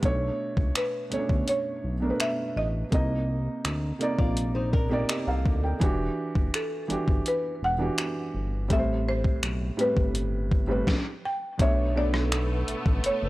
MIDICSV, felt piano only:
0, 0, Header, 1, 2, 480
1, 0, Start_track
1, 0, Tempo, 722892
1, 19, Time_signature, 4, 2, 24, 8
1, 8827, End_track
2, 0, Start_track
2, 0, Title_t, "Felt piano"
2, 0, Program_c, 0, 0
2, 0, Control_c, 0, 64, 127
2, 8, Note_on_c, 0, 47, 88
2, 17, Note_on_c, 0, 57, 81
2, 25, Note_on_c, 0, 62, 75
2, 27, Control_c, 0, 64, 0
2, 33, Note_on_c, 0, 73, 94
2, 158, Control_c, 0, 64, 127
2, 677, Note_off_c, 0, 47, 0
2, 681, Note_off_c, 0, 57, 0
2, 685, Note_off_c, 0, 62, 0
2, 689, Note_off_c, 0, 73, 0
2, 729, Note_on_c, 0, 47, 68
2, 737, Note_on_c, 0, 57, 64
2, 745, Note_on_c, 0, 61, 49
2, 753, Note_on_c, 0, 73, 79
2, 785, Note_off_c, 0, 61, 0
2, 788, Note_on_c, 0, 62, 63
2, 1286, Note_off_c, 0, 47, 0
2, 1291, Note_off_c, 0, 57, 0
2, 1299, Note_off_c, 0, 73, 0
2, 1316, Note_off_c, 0, 62, 0
2, 1327, Note_on_c, 0, 47, 69
2, 1336, Note_on_c, 0, 57, 63
2, 1343, Note_on_c, 0, 62, 66
2, 1352, Note_on_c, 0, 70, 60
2, 1388, Note_off_c, 0, 70, 0
2, 1395, Note_on_c, 0, 71, 76
2, 1885, Note_off_c, 0, 47, 0
2, 1890, Note_off_c, 0, 57, 0
2, 1894, Note_off_c, 0, 62, 0
2, 1919, Note_off_c, 0, 71, 0
2, 1928, Note_on_c, 0, 48, 73
2, 1937, Note_on_c, 0, 58, 72
2, 1944, Note_on_c, 0, 63, 68
2, 1946, Control_c, 0, 64, 0
2, 1952, Note_on_c, 0, 75, 87
2, 2075, Control_c, 0, 64, 127
2, 2597, Note_off_c, 0, 48, 0
2, 2601, Note_off_c, 0, 58, 0
2, 2605, Note_off_c, 0, 63, 0
2, 2609, Note_off_c, 0, 75, 0
2, 2649, Note_on_c, 0, 48, 83
2, 2656, Note_on_c, 0, 58, 74
2, 2665, Note_on_c, 0, 63, 77
2, 2673, Note_on_c, 0, 74, 90
2, 3206, Note_off_c, 0, 48, 0
2, 3210, Note_off_c, 0, 58, 0
2, 3215, Note_off_c, 0, 63, 0
2, 3219, Note_off_c, 0, 74, 0
2, 3249, Note_on_c, 0, 48, 84
2, 3257, Note_on_c, 0, 58, 76
2, 3265, Note_on_c, 0, 63, 74
2, 3274, Note_on_c, 0, 74, 91
2, 3382, Note_on_c, 0, 75, 65
2, 3386, Note_off_c, 0, 74, 0
2, 3386, Note_on_c, 0, 67, 55
2, 3494, Note_off_c, 0, 75, 0
2, 3496, Note_off_c, 0, 67, 0
2, 3503, Note_on_c, 0, 77, 68
2, 3507, Note_on_c, 0, 69, 60
2, 3729, Note_off_c, 0, 77, 0
2, 3731, Note_off_c, 0, 69, 0
2, 3741, Note_on_c, 0, 79, 63
2, 3746, Note_on_c, 0, 70, 52
2, 3806, Note_off_c, 0, 48, 0
2, 3811, Note_off_c, 0, 58, 0
2, 3815, Note_off_c, 0, 63, 0
2, 3849, Note_on_c, 0, 52, 91
2, 3857, Note_on_c, 0, 62, 84
2, 3866, Note_on_c, 0, 66, 86
2, 3868, Control_c, 0, 64, 0
2, 3873, Note_on_c, 0, 67, 97
2, 3968, Note_off_c, 0, 79, 0
2, 3970, Note_off_c, 0, 70, 0
2, 3995, Control_c, 0, 64, 127
2, 4517, Note_off_c, 0, 52, 0
2, 4521, Note_off_c, 0, 62, 0
2, 4525, Note_off_c, 0, 66, 0
2, 4529, Note_off_c, 0, 67, 0
2, 4568, Note_on_c, 0, 52, 68
2, 4576, Note_on_c, 0, 62, 63
2, 4585, Note_on_c, 0, 66, 63
2, 4593, Note_on_c, 0, 67, 76
2, 5126, Note_off_c, 0, 52, 0
2, 5130, Note_off_c, 0, 62, 0
2, 5134, Note_off_c, 0, 66, 0
2, 5138, Note_off_c, 0, 67, 0
2, 5167, Note_on_c, 0, 52, 70
2, 5175, Note_on_c, 0, 62, 64
2, 5184, Note_on_c, 0, 66, 64
2, 5191, Note_on_c, 0, 67, 77
2, 5726, Note_off_c, 0, 52, 0
2, 5729, Note_off_c, 0, 62, 0
2, 5734, Note_off_c, 0, 66, 0
2, 5738, Note_off_c, 0, 67, 0
2, 5766, Note_on_c, 0, 45, 74
2, 5775, Note_on_c, 0, 55, 68
2, 5782, Note_on_c, 0, 60, 70
2, 5787, Control_c, 0, 64, 0
2, 5790, Note_on_c, 0, 69, 66
2, 5828, Note_off_c, 0, 69, 0
2, 5834, Note_on_c, 0, 72, 81
2, 5911, Control_c, 0, 64, 127
2, 6436, Note_off_c, 0, 45, 0
2, 6440, Note_off_c, 0, 55, 0
2, 6444, Note_off_c, 0, 60, 0
2, 6469, Note_off_c, 0, 72, 0
2, 6487, Note_on_c, 0, 45, 63
2, 6495, Note_on_c, 0, 55, 62
2, 6504, Note_on_c, 0, 60, 61
2, 6512, Note_on_c, 0, 71, 74
2, 7046, Note_off_c, 0, 45, 0
2, 7049, Note_off_c, 0, 55, 0
2, 7054, Note_off_c, 0, 60, 0
2, 7058, Note_off_c, 0, 71, 0
2, 7087, Note_on_c, 0, 45, 84
2, 7095, Note_on_c, 0, 55, 77
2, 7104, Note_on_c, 0, 60, 73
2, 7112, Note_on_c, 0, 71, 89
2, 7213, Note_off_c, 0, 45, 0
2, 7217, Note_off_c, 0, 55, 0
2, 7221, Note_off_c, 0, 60, 0
2, 7225, Note_off_c, 0, 71, 0
2, 7227, Control_c, 0, 64, 0
2, 7686, Note_on_c, 0, 47, 78
2, 7695, Note_on_c, 0, 57, 74
2, 7702, Note_on_c, 0, 62, 72
2, 7711, Note_on_c, 0, 73, 85
2, 7838, Control_c, 0, 64, 127
2, 7913, Note_off_c, 0, 47, 0
2, 7918, Note_off_c, 0, 57, 0
2, 7922, Note_off_c, 0, 62, 0
2, 7926, Note_off_c, 0, 73, 0
2, 7928, Note_on_c, 0, 47, 65
2, 7936, Note_on_c, 0, 57, 65
2, 7944, Note_on_c, 0, 62, 64
2, 7953, Note_on_c, 0, 69, 73
2, 8818, Note_off_c, 0, 47, 0
2, 8821, Note_off_c, 0, 57, 0
2, 8826, Note_off_c, 0, 62, 0
2, 8827, Note_off_c, 0, 69, 0
2, 8827, End_track
0, 0, End_of_file